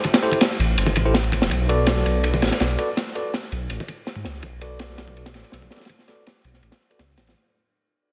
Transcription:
0.04 kick, ride
0.14 snare, ride
0.23 E4 G4 A4 C5, ride
0.32 kick, ride
0.41 snare, ride
0.51 snare
0.59 A1, ride
0.77 G1, ride
0.86 kick
0.96 A1, kick, ride
1.05 E4 G4 A4 C5
1.14 snare, ride
1.24 ride
1.32 kick, ride
1.42 E1, snare, ride
1.50 B1, kick, ride
1.69 F#4 A4 B4 D5, ride
1.87 snare, ride
1.97 snare
2.06 B1, ride
2.24 ride
2.34 kick
2.42 A1, snare, ride
2.47 snare, ride
2.51 snare, ride
2.60 B1, snare, ride
2.71 ride
2.78 F#4 A4 B4 D5, ride
2.97 snare, ride
3.06 snare
3.15 F#4 A4 B4 D5, ride
3.34 snare, ride
3.43 snare
3.52 B1, ride
3.70 A1, ride
3.80 kick
3.88 kick, ride
4.07 snare, ride
4.16 G#2, kick
4.25 C#2, snare, ride
4.34 snare
4.42 B1, kick, ride
4.61 F#4 A4 B4 D5, ride
4.79 snare, ride
4.90 snare
4.98 B1, snare, ride
5.08 kick
5.17 ride
5.26 snare, ride
5.34 A1, snare, ride
5.44 ride
5.52 B1, snare, ride
5.62 kick
5.70 F#4 A4 B4 D5, snare, ride
5.76 snare, ride
5.80 snare, ride
5.85 snare, ride
5.89 kick, ride
5.99 snare
6.08 F#4 A4 B4 D5, snare, ride
6.27 snare, ride
6.35 snare
6.44 B1, ride
6.54 snare
6.63 A1, ride
6.72 snare, ride
6.80 snare
6.90 F#4 A4 B4 D5, ride
6.99 C#2, snare, ride
7.09 snare
7.17 A1, snare, ride
7.27 snare, ride

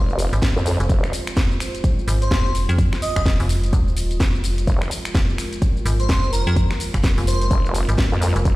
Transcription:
Already playing: F1 G#3 F4 C5
0.10 shaker
0.19 open hi-hat, shaker
0.33 G#1, closed hi-hat, shaker
0.42 kick, snare, closed hi-hat, shaker
0.56 F2, shaker
0.66 open hi-hat, shaker
0.80 F1, closed hi-hat, shaker
0.89 F1, kick, closed hi-hat, shaker
1.04 finger snap, shaker
1.13 open hi-hat, shaker
1.27 finger snap, closed hi-hat, shaker
1.37 F1, kick, snare, closed hi-hat, shaker
1.52 shaker
1.60 finger snap, open hi-hat, shaker
1.75 closed hi-hat, shaker
1.84 kick, closed hi-hat, shaker
1.99 shaker
2.08 G#1, open hi-hat, shaker
2.22 C5, closed hi-hat, shaker
2.31 F1, kick, snare, closed hi-hat, shaker
2.46 shaker
2.55 open hi-hat, shaker
2.69 F2, closed hi-hat, shaker
2.78 kick, closed hi-hat, shaker
2.93 finger snap, snare, shaker
3.02 D#5, open hi-hat, shaker
3.16 F1 D#5, finger snap, kick, closed hi-hat, shaker
3.26 kick, snare, closed hi-hat, shaker
3.40 F1, open hi-hat, shaker
3.49 open hi-hat, shaker
3.64 closed hi-hat, shaker
3.73 D#1, kick, closed hi-hat, shaker
3.88 shaker
3.97 open hi-hat, shaker
4.11 closed hi-hat, shaker
4.20 F1, kick, snare, closed hi-hat, shaker
4.35 shaker
4.44 open hi-hat, shaker
4.58 closed hi-hat, shaker
4.67 F1 A#4, kick, closed hi-hat, shaker
4.82 finger snap, shaker
4.91 open hi-hat, shaker
5.05 finger snap, closed hi-hat, shaker
5.15 F1, kick, snare, closed hi-hat, shaker
5.30 shaker
5.38 finger snap, open hi-hat, shaker
5.53 closed hi-hat, shaker
5.62 kick, closed hi-hat, shaker
5.77 shaker
5.85 G#1, open hi-hat, shaker
6.00 C5, closed hi-hat, shaker
6.09 F1, kick, snare, closed hi-hat, shaker
6.24 shaker
6.33 A#4, open hi-hat, shaker
6.47 F2 A#4, closed hi-hat, shaker
6.56 kick, closed hi-hat, shaker
6.71 finger snap, snare, shaker
6.80 open hi-hat, shaker
6.94 F1, finger snap, kick, closed hi-hat, shaker
7.04 kick, snare, closed hi-hat, shaker
7.18 F1, open hi-hat, shaker
7.27 C5, open hi-hat, shaker
7.41 C5, closed hi-hat, shaker
7.51 F1, kick, closed hi-hat, shaker
7.66 shaker
7.74 open hi-hat, shaker
7.89 G#1, closed hi-hat, shaker
7.98 kick, snare, closed hi-hat, shaker
8.12 F2, shaker
8.22 open hi-hat, shaker
8.36 F1, closed hi-hat, shaker
8.45 F1, kick, closed hi-hat, shaker

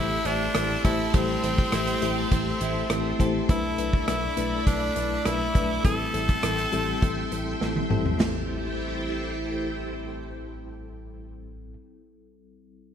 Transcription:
Already playing: A1 A2 G3 A3 C4 E4 G4 A4 C5 E5 G5 C6
0.25 A1 A3 D4 E4 G4 C5, closed hi-hat
0.55 A1 A3 C4 E4 G4 C5, cross-stick, closed hi-hat
0.84 A1 A3 E4 G4 A4 C5, kick, closed hi-hat
1.14 A1 A2 G3 A3 C4 E4 G4 C5, kick, closed hi-hat
1.43 A1 A3 C4 E4 G4 C5, closed hi-hat
1.58 kick
1.72 A1 A3 E4 G4 C5, cross-stick, closed hi-hat
1.87 closed hi-hat
2.01 A1 A3 E4 G4 C5, closed hi-hat
2.18 A4
2.31 A1 A3 C4 E4 G4 C5, kick, closed hi-hat
2.60 A1 A3 E4 G4 C5, closed hi-hat
2.90 A1 A3 C4 E4 G4 C5, cross-stick, closed hi-hat
3.19 A1 A3 E4 G4 A4 C5, kick, closed hi-hat
3.49 B1 B2 A3 D4 E4 B4 D5 E5 B5, kick, closed hi-hat
3.78 B1 A3 D4 E4 B4, closed hi-hat
3.93 kick
4.07 B1 A3 D4 E4 B4, cross-stick, closed hi-hat
4.37 B1 A3 D4 E4 B4, closed hi-hat
4.66 B1 A3 D4 E4 B4, kick, closed hi-hat
4.95 B1 A3 D4 E4 B4, closed hi-hat
5.25 B1 A3 D4 E4 B4, cross-stick, closed hi-hat
5.54 B1 A3 D4 E4 B4, kick, closed hi-hat
5.84 A1 A2 G3 C4 E4 A4 G5 C6, kick, closed hi-hat
6.13 A1 G3 C4 E4 A4, closed hi-hat
6.29 kick, closed hi-hat
6.43 A1 G3 C4 E4 A4, cross-stick, closed hi-hat
6.58 closed hi-hat
6.72 A1 G3 C4 E4 A4, closed hi-hat
7.02 A1 G3 C4 E4 A4, kick, closed hi-hat
7.32 A1 G3 C4 E4 A4, closed hi-hat
7.61 A1 G3 C4 E4 A4, snare
7.76 high tom
7.90 A1 G3 C4 E4 A4, mid tom
8.06 floor tom
8.18 A1 G3 C4 E4 G4 A4 C5 G5, snare, splash
8.22 A4

